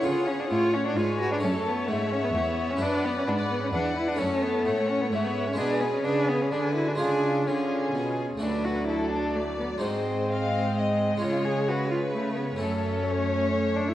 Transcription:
X:1
M:3/4
L:1/16
Q:1/4=129
K:F#m
V:1 name="Violin section"
f8 g4 | a4 f8 | f8 d4 | a4 f4 f4 |
g4 g4 g4 | g4 g6 z2 | d12 | ^d12 |
c12- | c12 |]
V:2 name="Violin section"
c4 c4 B4 | A4 e8 | d4 d4 f4 | c4 c4 e4 |
B4 B4 B4 | G4 G6 z2 | B4 A4 d4 | ^B4 ^e4 ^d4 |
c4 B8 | A4 c8 |]
V:3 name="Viola section"
G4 c4 c4- | c12 | B8 B4 | A8 c4 |
G4 G4 G2 F2 | ^E4 E6 z2 | F,12 | G,12- |
G,12 | A,12 |]
V:4 name="Cello"
^E2 C D E2 C D E2 F D | C2 B,2 A,2 C B, A, B,2 C | D2 B, C D2 B, C D2 E D | C2 B,2 A,2 C B, A, B,2 C |
D2 B, C D2 B, C D2 E D | D4 C6 z2 | D2 F2 E2 D2 A,2 B,2 | ^B,12 |
^E2 G2 F2 E2 A,2 B,2 | C8- C2 D E |]
V:5 name="Harpsichord"
[B,C]12 | [A,C]4 z8 | [B,F]12 | [A,CF]12 |
[G,B,G]12 | [G,^EG]12 | [A,DF]12 | [G,^DF]12 |
[G,C]12 | [A,C]12 |]
V:6 name="Harpsichord" clef=bass
C,4 A,,4 G,,4 | F,,4 G,,4 E,,4 | F,,4 G,,4 E,,4 | F,,4 A,,4 G,,4 |
B,,4 C,4 D,4 | C,4 D,4 B,,4 | D,,12 | G,,12 |
C,12 | F,,12 |]
V:7 name="Cello section" clef=bass
C,4 A,,4 G,,4 | F,,4 G,,4 E,,4 | F,,4 G,,4 E,,4 | F,,4 A,,4 G,,4 |
B,,4 C,4 D,4 | C,4 D,4 B,,4 | D,,12 | G,,12 |
C,12 | F,,12 |]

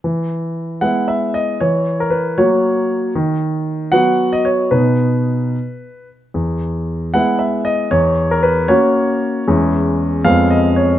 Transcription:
X:1
M:6/8
L:1/16
Q:3/8=77
K:E
V:1 name="Grand piano"
z6 f2 e2 d2 | c3 ^A B2 c6 | z6 f3 d c2 | B8- B2 z2 |
z6 f2 e2 d2 | c3 ^A B2 c6 | [K:C#dor] z6 ^e2 d2 c2 |]
V:2 name="Grand piano"
E,6 [G,B,E]6 | E,6 [F,^A,F]6 | D,6 [F,B,F]6 | [B,,B,D]6 z6 |
E,,6 [G,B,E]6 | E,,6 [^A,CF]6 | [K:C#dor] [E,,G,CE]6 [^E,,G,B,C]6 |]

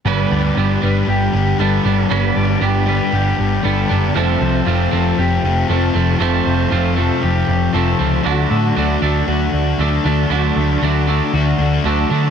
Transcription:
X:1
M:4/4
L:1/8
Q:1/4=117
K:G
V:1 name="Clean electric guitar"
B d G B G2 A2 | B d G B G2 A2 | A c =F A G2 A2 | A c =F A G2 A2 |
F A F A F2 A2 | F A F A F2 A2 |]
V:2 name="Overdriven electric guitar"
[G,,D,G,B,D]2 [D,G,B,D] [G,B,D]3 [D,G,B,D] [G,B,D] | [G,,D,G,B,D]2 [D,G,B,D] [G,B,D]3 [D,G,B,D] [G,B,D] | [=F,,C,=F,A,C]2 [C,F,A,C] [F,A,C]3 [C,F,A,C] [F,A,C] | [=F,,C,=F,A,C]2 [C,F,A,C] [F,A,C]3 [C,F,A,C] [F,A,C] |
[D,F,A,D]2 [D,F,A,D] [F,A,D]3 [D,F,A,D] [F,A,D] | [D,F,A,D]2 [D,F,A,D] [F,A,D]3 [D,F,A,D] [F,A,D] |]
V:3 name="Distorted electric guitar" clef=bass
[G,,D,G,] [D,G,] [G,,D,G,] [D,G,] [G,,D,G,] [D,G,] [G,,D,G,] [D,G,] | [G,,D,G,] [D,G,] [G,,D,G,] [D,G,] [G,,D,G,] [D,G,] [G,,D,G,] [D,G,] | [=F,,C,=F,] [C,F,] [F,,C,F,] [C,F,] [F,,C,F,] [C,F,] [F,,C,F,] [C,F,] | [=F,,C,=F,] [C,F,] [F,,C,F,] [C,F,] [F,,C,F,] [C,F,] [F,,C,F,] [C,F,] |
[D,A,D] [A,D] [D,A,D] [A,D] [D,A,D] [A,D] [D,A,D] [A,D] | [D,A,D] [A,D] [D,A,D] [A,D] [D,A,D] [A,D] [D,A,D] [A,D] |]
V:4 name="Picked electric bass" clef=bass
G,,, D,, G,,, G,,, G,,, G,,, G,,, G,,, | G,,, G,,, G,,,2 G,,, G,,, G,,, F,,, | =F,,, C,, F,,, F,,, F,,, F,,, F,,, F,,, | =F,,, F,,, F,,,2 F,,, F,,, F,,, ^C,, |
D,, A,, D,, D,, D,, D,, D,, D,, | D,, D,, D,,2 D,, D,, D,, D, |]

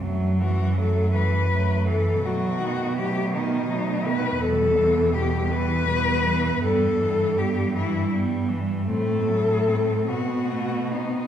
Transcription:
X:1
M:6/8
L:1/8
Q:3/8=54
K:Em
V:1 name="Cello"
z F A B2 A | F2 G ^D2 B | A2 G B3 | A2 G E z2 |
A3 F2 ^D |]
V:2 name="Cello"
A, F, A, F, A, F, | A, B, A, B, A, B, | G, B, G, B, G, B, | B, G, B, G, B, G, |
C A, C C B, C |]
V:3 name="Cello" clef=bass
F, E, F, E, F, E, | F, ^D, F, D, F, D, | B,, E, B,, E, B,, E, | G, E, G, E, G, E, |
A, F, A, B, A, B, |]
V:4 name="Cello" clef=bass
F,,6 | B,,6 | E,,6 | G,,6 |
A,,3 B,,3 |]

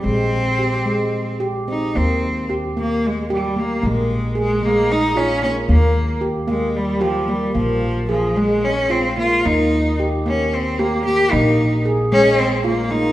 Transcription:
X:1
M:7/8
L:1/8
Q:1/4=113
K:Ebmix
V:1 name="Cello"
C4- C z E | C2 z B, A, G, B, | A,2 A, B, E D D | B,2 z A, G, F, G, |
F,2 F, A, D C F | E2 z D C B, G | E2 z D C B, E |]
V:2 name="Handpan"
A,2 G A,2 G C | B,2 G B,2 G B, | B,2 A A,2 F B, | B,2 G B,2 G B, |
B,2 A A,2 F B, | B,2 G B,2 G B, | B,2 A A,2 F B, |]
V:3 name="Upright bass" clef=bass
B,,,6- B,,, | E,,6- E,, | B,,,6- B,,, | E,,6- E,, |
B,,,6- B,,, | E,,6- E,, | B,,,6- B,,, |]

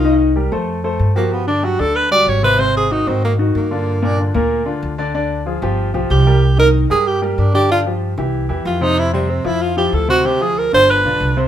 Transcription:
X:1
M:4/4
L:1/8
Q:1/4=188
K:Gm
V:1 name="Tenor saxophone"
F z6 B, | =B, D ^F A =B d ^c B | c _A E C B, z B,2- | B, D z6 |
z6 G2- | [K:Fdor] G B z A G B, D G | F z4 z F E | =E G, C E F G =A ^F |
G A B c =B3 z |]
V:2 name="Grand piano"
[E,Ee]2 [G,GB] [A,Ac]2 [A,Ac]2 [F,^FG]- | [F,^FG] [D,Dd] [^F,FG] [D,Dd]2 [G,FG]2 [C,Cc] | [C,Cc]2 [E,E_G] [E,EG]2 [E,EG]2 [D,DF]- | [D,DF] [B,,B,B] [D,DF] [B,,B,B]2 [D,DF]2 [D,Dd] |
[D,Dd]2 [F,F_A] [F,FG]2 [F,FG]2 [G,GB] | [K:Fdor] z [E,Ee]2 [G,GB]2 [G,GB]2 [D,Dd] | [D,Dd] [F,FG]2 [=E,=EG]2 [E,EG]2 [C,Cc]- | [C,Cc] [C,Cc]2 [F,=EF]2 [F,EF]2 [C,Cc] |
[C,Cc] [F,FA]2 [D,DF]2 [D,DF]2 [C,Cc] |]
V:3 name="Upright bass" clef=bass
C,,3 F,,3 G,,2- | G,,3 D,,3 _A,,,2- | _A,,,3 _A,,3 G,,2- | G,,3 D,,3 D,,2- |
D,,3 G,,,2 =B,,, C,,2- | [K:Fdor] C,,3 G,,3 G,,2- | G,,3 C,,2 =E,, F,,2- | F,,3 F,,3 D,,2- |
D,,3 G,,,2 =B,,, C,,2 |]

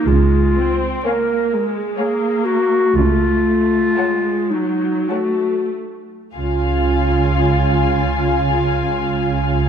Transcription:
X:1
M:3/4
L:1/8
Q:1/4=54
K:Db
V:1 name="Violin section"
z2 a2 a2 | z2 =a2 a2 | a6 |]
V:2 name="Violin section"
z2 [df]2 [df]2 | z2 [dg]2 [dg]2 | f6 |]
V:3 name="Clarinet"
F2 B z A G | F3 E G z | F6 |]
V:4 name="Viola section"
A, C B, A, B,2 | =A,2 _A, G, =A, z | F6 |]
V:5 name="Cello section" clef=bass
D,2 z4 | D,2 z4 | D,6 |]
V:6 name="Double bass section" clef=bass
D,,2 z4 | D,,2 z4 | D,,6 |]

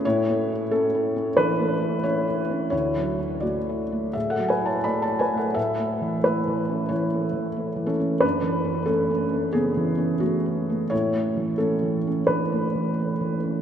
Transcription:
X:1
M:4/4
L:1/16
Q:1/4=89
K:A
V:1 name="Felt piano"
[Ec]4 [CA]4 [DB]4 [Ec]4 | [Ec]4 [Fd]4 [Ge] [Af] [Bg] [ca] [db] [ca] [Bg] [Af] | [Ae]4 [EB]4 [Ec]6 [CA]2 | [DB]4 [CA]4 [B,G]4 [A,F]4 |
[Ec]4 [CA]4 [DB]8 |]
V:2 name="Felt piano"
(3A,,2 A,2 E2- (3E2 E2 C2 (3E,2 A,2 E2 (3C2 E2 C2 | (3D,,2 F,2 E2 (3A,2 E2 A,2 (3A,,2 F,2 E2 (3A,2 E2 A,2 | (3A,,2 A,2 E,2 (3A,2 E,2 C2 (3E,2 A,2 E,2 (3A,2 E,2 C2 | (3F,,2 E,2 C2 (3A,2 C2 A,2 (3C,2 E,2 C2- (3C2 C2 A,2 |
(3A,,2 A,2 E,2 (3A,2 E,2 C2 (3E,2 A,2 E,2 (3A,2 E,2 C2 |]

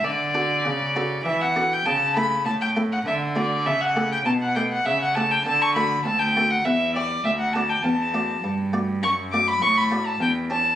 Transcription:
X:1
M:3/4
L:1/16
Q:1/4=100
K:D
V:1 name="Violin"
d8 e f2 g | a2 b2 a g2 f e2 d2 | e f2 g a f g f e f a g | a c' b2 a g2 f e2 d2 |
e f a g a4 z4 | c'2 d' b c' b2 a g2 a2 |]
V:2 name="Harpsichord"
z2 [DFA]4 [DFA]4 [DFA]2 | z2 [A,EA]4 [A,EA]2 z2 [A,FA]2 | z2 [A,GA]4 [A,GA]4 [A,GA]2 | z2 [A,FA]4 [A,FA]2 z2 [Gc]2 |
z2 [A,Fd]4 [A,Fd]4 [A,Fd]2 | z2 [A,Fd]4 [A,Fd]2 z2 [CGc]2 |]
V:3 name="Harpsichord" clef=bass
D,4 C,4 E,4 | C,4 A,,4 D,4 | C,4 B,,4 C,4 | D,4 D,,4 E,,4 |
D,,4 E,,4 G,,4 | F,,4 A,,4 E,,4 |]
V:4 name="Cello" clef=bass
D,4 C,4 E,4 | C,4 A,,4 D,4 | C,4 B,,4 C,4 | D,4 D,,4 E,,4 |
D,,4 E,,4 G,,4 | F,,4 A,,4 E,,4 |]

